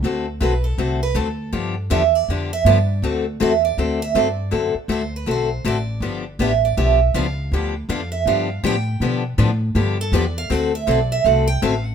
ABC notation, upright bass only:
X:1
M:4/4
L:1/8
Q:"Swing" 1/4=161
K:G
V:1 name="Upright bass" clef=bass
D,,2 B,,,2 C,,2 D,,2 | G,,2 E,,2 =F,,2 G,,2 | D,,2 E,,2 D,,2 G,,2 | F,, z D,,2 B,,,2 A,,,2 |
G,,,2 A,,,2 B,,,2 ^C,,2 | D,,2 =F,,2 G,,2 A,,2 | B,,2 A,,2 G,,2 E,,2 | D,,2 B,,,2 C,,2 A,,,2 |]